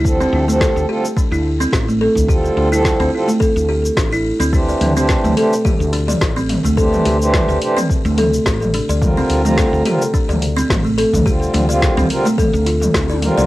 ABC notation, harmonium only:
X:1
M:4/4
L:1/16
Q:"Swing 16ths" 1/4=107
K:Dm
V:1 name="Harmonium"
[D,F,G,CA]3 [D,F,G,CA]3 [D,G,CFA] z8 z | [D,G,CFA]3 [D,F,G,CA]3 [D,G,CFA] z8 z | [E,A,DGc]3 [E,A,DGc]3 [E,A,DGc] z8 z | [E,A,DGc]3 [E,A,DGc]3 [E,A,DGc] z8 z |
[D,G,CFB]3 [D,G,CFb]3 [D,G,CFB] z8 z | [D,G,CF]3 [D,G,B,CF]3 [D,G,CFB] z6 z [D,G,CFB]2 |]